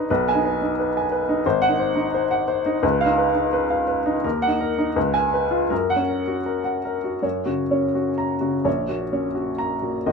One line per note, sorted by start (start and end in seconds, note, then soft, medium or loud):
0.00 0.11 G#1 medium
0.00 0.12 D#4 medium
0.00 0.10 B4 medium
0.00 0.12 D#5 medium
0.10 1.41 B1 medium
0.10 0.37 B4 medium
0.28 0.55 G#5 medium
0.35 0.61 D#4 medium
0.45 0.71 B4 medium
0.62 0.88 D#4 soft
0.79 1.05 B4 medium
0.97 1.22 G#5 medium
1.12 1.38 B4 medium
1.29 1.45 D#4 medium
1.46 2.80 G#1 medium
1.46 1.72 C5 medium
1.62 1.89 F#5 medium
1.69 1.94 D#4 medium
1.80 2.06 C5 medium
1.96 2.23 D#4 medium
2.14 2.42 C5 medium
2.31 2.59 F#5 medium
2.48 2.76 C5 medium
2.66 2.83 D#4 medium
2.83 4.20 C#2 medium
2.83 3.11 B4 medium
3.01 3.28 F5 medium
3.06 3.33 D#4 medium
3.18 3.46 B4 medium
3.35 3.63 D#4 medium
3.53 3.81 B4 medium
3.70 3.99 F5 medium
3.88 4.16 B4 medium
4.06 4.24 D#4 medium
4.24 4.94 D#2 medium
4.24 4.53 A#4 medium
4.42 4.70 F#5 medium
4.48 4.77 D#4 medium
4.60 4.89 A#4 medium
4.78 4.96 D#4 medium
4.96 5.69 C#2 medium
4.96 5.25 B4 medium
5.14 5.44 G#5 medium
5.34 5.64 B4 medium
5.51 5.70 F4 medium
5.70 7.19 F#2 medium
5.70 6.01 A#4 medium
5.90 6.20 F#5 medium
5.96 6.37 C#4 soft
6.09 6.39 A#4 soft
6.28 6.58 F#4 soft
6.46 6.77 A#4 medium
6.64 6.96 F#5 medium
6.85 7.16 A#4 medium
7.04 7.23 F#4 soft
7.22 8.62 F#2 medium
7.22 7.62 C#5 soft
7.46 7.85 C#3 soft
7.46 7.85 F#4 soft
7.71 8.10 C#4 soft
7.71 8.09 C#5 soft
7.95 8.33 F#4 soft
8.18 8.56 A#5 medium
8.41 8.65 C#3 soft
8.41 8.65 F#4 soft
8.65 10.02 A#1 medium
8.65 9.03 C#5 soft
8.89 9.27 A#2 soft
8.89 9.27 F#4 soft
9.13 9.50 C#4 soft
9.13 9.50 C#5 soft
9.35 9.73 F#4 soft
9.58 9.97 A#5 medium
9.82 10.06 A#2 soft
9.82 10.06 F#4 soft
10.06 10.12 G#1 medium
10.06 10.12 D#5 medium